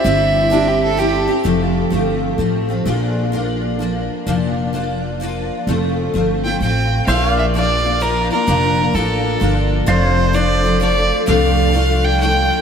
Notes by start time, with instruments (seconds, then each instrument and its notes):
Already playing: pedal steel guitar C5 E5, fiddle E5
0.04 upright bass G1, steel-string acoustic guitar C3 G3 C4 E4 G4
0.50 steel-string acoustic guitar G3 C4 E4 G4, fiddle D4
0.68 fiddle G4
0.84 fiddle A4
0.97 steel-string acoustic guitar G3 C4 E4 G4, fiddle G4
1.28 steel-string acoustic guitar C4 E4 G4
1.44 upright bass F1, steel-string acoustic guitar F2 C3 F3 A3 C4 F4
1.90 upright bass G1, steel-string acoustic guitar F3 A3 C4 F4
2.38 upright bass A1, steel-string acoustic guitar F3 A3 C4 F4
2.69 steel-string acoustic guitar F3 A3 C4 F4
2.86 upright bass A#1, steel-string acoustic guitar A#2 F3 A#3 D4 F4
3.32 steel-string acoustic guitar F3 A#3 D4 F4
3.79 steel-string acoustic guitar F3 A#3 D4 F4
4.27 upright bass F1, steel-string acoustic guitar A#2 F3 A#3 D4 F4
4.73 steel-string acoustic guitar F3 A#3 D4 F4
5.20 steel-string acoustic guitar F3 A#3 D4 F4
5.67 upright bass F1, steel-string acoustic guitar F2 C3 F3 A3 C4 F4
6.14 upright bass G1, steel-string acoustic guitar F3 A3 C4 F4
6.44 steel-string acoustic guitar F3 A3 C4 F4, fiddle G5
6.60 upright bass A1, steel-string acoustic guitar F3 A3 C4 F4, fiddle G5
7.07 upright bass A#1, steel-string acoustic guitar A#2 F3 A#3 D4 F4, pedal steel guitar C5 E5, fiddle F5
7.29 pedal steel guitar D5 F5
7.39 fiddle E5
7.54 steel-string acoustic guitar F3 A#3 D4 F4, fiddle D5
7.84 steel-string acoustic guitar A#3 D4 F4
8.00 steel-string acoustic guitar F3 A#3 D4 F4, fiddle A#4
8.31 steel-string acoustic guitar A#3 D4 F4, fiddle A#4
8.47 upright bass F1, steel-string acoustic guitar A#2 F3 A#3 D4 F4
8.94 upright bass A1, steel-string acoustic guitar F3 A#3 D4 F4, fiddle A4
9.40 upright bass G1, steel-string acoustic guitar F3 A#3 D4 F4
9.86 upright bass F1, steel-string acoustic guitar F2 C3 F3 A3 D4 F4, fiddle C5, pedal steel guitar D5 F5
10.13 pedal steel guitar C5
10.33 steel-string acoustic guitar F3 A3 D4 F4, fiddle D5
10.64 steel-string acoustic guitar F3 A3 D4 F4
10.80 steel-string acoustic guitar F3 A3 D4 F4, fiddle D5
11.26 upright bass C2, steel-string acoustic guitar F2 C3 F3 A3 D4 F4, fiddle F5
11.73 steel-string acoustic guitar F3 A3 D4 F4
12.04 fiddle G5
12.20 steel-string acoustic guitar F3 A3 D4 F4, fiddle G5